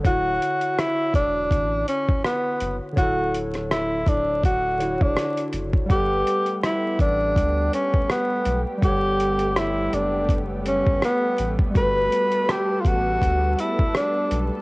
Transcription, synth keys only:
X:1
M:4/4
L:1/8
Q:"Swing 16ths" 1/4=82
K:Glyd
V:1 name="Synth keys"
[D,EFc]8 | [D,EAc]4- [D,EAc] [D,EFc]3 | [G,ABf]8 | [G,Acf]8 |
[G,FAB]8 |]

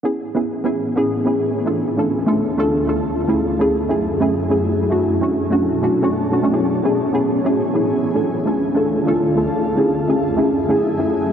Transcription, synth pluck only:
X:1
M:4/4
L:1/16
Q:"Swing 16ths" 1/4=148
K:A
V:1 name="Synth pluck"
[B,CEG]3 [B,CEG] z2 [B,CEG]3 [B,CEG]3 [B,CEG]4 | [A,D=FA]3 [A,DFA] z2 [A,DFA]3 [A,DFA]3 [A,DFA]4 | [A,CEG]3 [A,CEG] z2 [A,CEG]3 [A,CEG]3 [A,CEG]4 | [A,CDF]3 [A,CDF] z2 [A,CDF]3 [A,CDF]2 [A,CDF]3 [A,CDF] [A,CDF] |
[B,CEG]3 [B,CEG] z2 [B,CEG]3 [B,CEG]3 [B,CEG]4 | [A,D=FA]3 [A,DFA] z2 [A,DFA]3 [A,DFA]3 [A,DFA]4 | [A,CEG]3 [A,CEG] z2 [A,CEG]3 [A,CEG]3 [A,CEG]4 |]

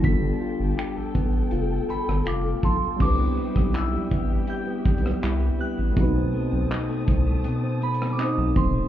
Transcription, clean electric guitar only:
X:1
M:4/4
L:1/16
Q:1/4=81
K:Gmix
V:1 name="Clean electric guitar"
G,2 F2 G A B,2 F2 A2 F2 A2 | [K:Bphr] z B, G, B, E G, B, G,2 B, G, B, E G, B, G, | B,, C A, C ^D A, C A, B,, C A, C D A, C A, |]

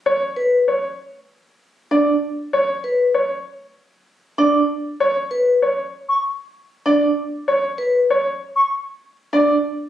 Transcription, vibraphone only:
X:1
M:4/4
L:1/16
Q:1/4=97
K:Bdor
V:1 name="Vibraphone"
z2 B z8 z D z3 | z2 B z8 z D z3 | z2 B z8 z D z3 | z2 B z8 z D z3 |]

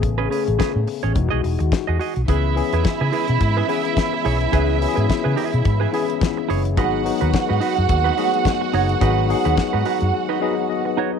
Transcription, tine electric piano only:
X:1
M:4/4
L:1/16
Q:"Swing 16ths" 1/4=107
K:C#m
V:1 name="Tine electric piano"
z16 | z16 | z8 z2 f2 e2 c2 | z16 |
z6 g2 f f d2 d B B2 |]
V:2 name="Tine electric piano"
[C,A,B,G]4 z4 [E,G,DF]6 z2 | [E,B,CG]2 [E,B,CG]6 z2 [E,B,CG]4 z2 | [E,B,CG]2 [E,B,CFG]6 z2 [E,B,CG]4 z2 | [F,B,DG]2 [F,B,DF]6 z2 [F,A,B,DG]4 z2 |
[F,B,DG]2 [F,B,DG]6 z2 [F,B,DG]4 z2 |]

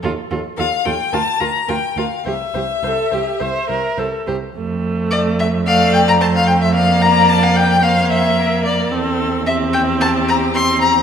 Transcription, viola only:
X:1
M:4/4
L:1/8
Q:1/4=110
K:F
V:1 name="Viola"
F F F F F F F F | G G A G c B A G | A,4 A,2 A,2 | B,4 B,4 |
C2 C4 C2 |]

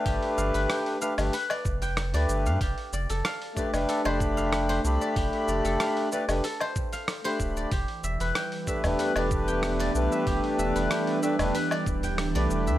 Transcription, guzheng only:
X:1
M:4/4
L:1/16
Q:1/4=94
K:Flyd
V:1 name="Guzheng"
G z f B g z f2 B d2 g z d z f | G z d A f z d2 A c2 f z c z d | G z d A f z d2 A c2 f z c z d | G z e B g z e2 B d2 g z d z e |
G z e B g z e2 B d2 g z d z e |]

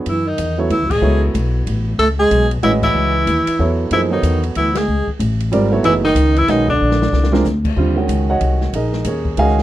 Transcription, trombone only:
X:1
M:3/4
L:1/8
Q:"Swing" 1/4=187
K:F#dor
V:1 name="Trombone" clef=bass
E, D,2 z E, G,- | G, z4 z | A, G,2 z E, E,- | E,4- E, z |
E, D,2 z E, G,- | G, z4 z | E, D,2 E, D, =D,- | =D,4 z2 |
[K:Ebdor] z6 | z6 |]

